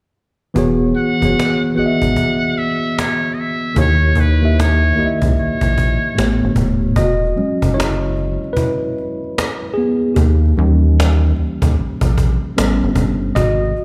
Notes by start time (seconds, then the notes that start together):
0.54 E1 E3 B3 F#4 G#4, cajon bass
0.58 C#5
0.97 F#5, cajon slap
1.21 F#1 E3 B3 F#4 G#4, cajon bass
1.25 C#5
1.39 cajon slap
1.66 cajon slap
1.75 G#1 E3 B3 F#4 G#4 F#5, cajon slap
1.79 D#5
1.86 E5
2.02 G#1, cajon bass
2.16 cajon bass
2.44 cajon slap
2.58 E5, cajon slap
2.98 C#5, cajon slap
3.34 D#5, cajon slap
3.40 E5
3.63 cajon slap
3.74 D#2 D#3 A#3 E4 G4 C#5, cajon bass
3.80 C#5
4.15 D#2, cajon bass
4.20 B4
4.41 D#3 A#3 E4 G4, cajon slap
4.45 E5
4.60 C#5, cajon slap
4.85 cajon slap
4.95 C#2 D#3 A#3 E4 G4, cajon slap
5.00 D#5
5.06 E5
5.22 C#2, cajon bass
5.37 A#1 C#5, cajon slap
5.61 A#1, cajon bass, cajon slap
5.78 cajon bass
6.14 A2 A3 B3 G4, cajon slap
6.19 A1 C#5
6.44 G1
6.56 D#1, cajon bass
6.83 cajon slap
6.96 E1 F#4 D#5, cajon bass
7.26 cajon slap
7.36 F#3 G#3 C#4, cajon slap
7.62 F#1, cajon bass
7.74 E4 C#5
7.80 cajon slap
8.17 cajon slap
8.44 cajon slap
8.53 B4, cajon bass
8.57 E4
8.98 cajon slap
9.24 cajon slap
9.38 cajon slap
9.74 B3 G#4
10.15 D#2 A#3 G4, cajon bass
10.46 cajon slap
10.57 D#2 E3 G3 C#4, cajon slap
10.82 cajon slap
11.00 cajon slap
11.36 D#2, cajon slap
11.62 D#2, cajon bass, cajon slap
11.78 A#1, cajon slap
12.01 A#1, cajon bass
12.18 cajon bass
12.43 cajon slap
12.56 A1 G3 B3 C#4, cajon slap
12.84 G1
12.96 G1, cajon bass
13.35 G#1 F#4 D#5, cajon bass
13.65 cajon slap
13.76 cajon slap